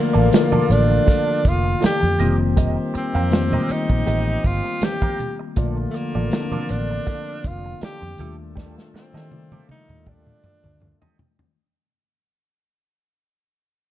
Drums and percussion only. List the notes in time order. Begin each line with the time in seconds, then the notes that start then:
0.16 high conga
0.33 snare, closed hi-hat
0.53 high conga, low conga
0.70 closed hi-hat
1.08 kick, snare, closed hi-hat
1.28 muted conga
1.45 kick, closed hi-hat, high conga
1.82 snare, closed hi-hat, muted conga, high conga
2.03 high conga
2.19 closed hi-hat, low conga
2.57 kick, closed hi-hat, muted conga, low conga
2.95 closed hi-hat
3.15 high conga
3.32 snare, closed hi-hat
3.52 high conga, low conga
3.69 closed hi-hat
3.90 kick
4.07 closed hi-hat, muted conga
4.28 muted conga
4.44 kick, closed hi-hat, high conga
4.81 snare, closed hi-hat, muted conga, high conga
5.02 kick, muted conga, high conga
5.18 closed hi-hat, low conga
5.56 kick, closed hi-hat, muted conga, low conga
5.77 muted conga
5.94 closed hi-hat
6.15 high conga
6.32 snare, closed hi-hat, muted conga
6.52 muted conga, high conga, low conga
6.69 closed hi-hat
7.07 kick, snare, closed hi-hat, muted conga
7.44 kick, closed hi-hat, high conga
7.81 snare, closed hi-hat, muted conga, high conga
8.02 muted conga, high conga
8.18 closed hi-hat, low conga
8.57 kick, snare, muted conga
8.78 snare
8.96 snare
9.16 snare, high conga
9.32 high tom
9.52 high tom, muted conga, high conga, low conga
9.69 high tom
9.89 mid tom
10.06 kick, mid tom, muted conga
10.27 mid tom, muted conga
10.43 mid tom, high conga
10.64 mid tom
10.80 mid tom, muted conga, high conga
11.01 floor tom, muted conga, high conga
11.19 floor tom, low conga
11.39 floor tom